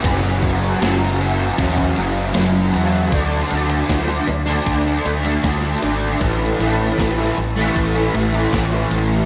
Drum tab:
RD |x-x-x-x-x-x-x-x-|----------------|----------------|
HH |----------------|x-xxx-xxx-xxx-x-|x-x-x-x-x-x-x-x-|
SD |----o-------o---|----o-------o---|----o--o----o---|
BD |o-o-----oo------|o---o---o---o---|o---o---o---o---|